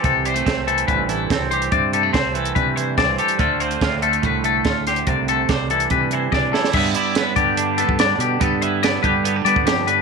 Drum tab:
CC |----------------|----------------|----------------|----------------|
HH |x-xxx-xxx-x-x-xx|x-x-x-xxx-x-x-xx|x-xxx-xxx-x-x-xx|x-x-x-xxx-x-----|
SD |----o-------o---|----o-------o---|----o-------o-o-|----o-------o-oo|
BD |o---o---o---o---|o---o---o---o---|o---o---o---o---|o---o---o---o---|

CC |x---------------|----------------|
HH |--x-x-x-x-x-x-x-|x-x-x-x-x-x-x-x-|
SD |----o-------o---|----o-------o---|
BD |o-----o----o----|o-----o----o----|